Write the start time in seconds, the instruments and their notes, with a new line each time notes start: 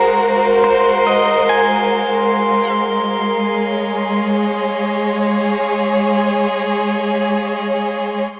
Already playing: string section G#3 F#4 G#4 A#4 C5 F5, pedal steel guitar A#4, synth texture C6
0.64 pedal steel guitar C5
1.07 pedal steel guitar D#5
1.49 pedal steel guitar G#5
3.38 string section G#4
3.51 string section C#5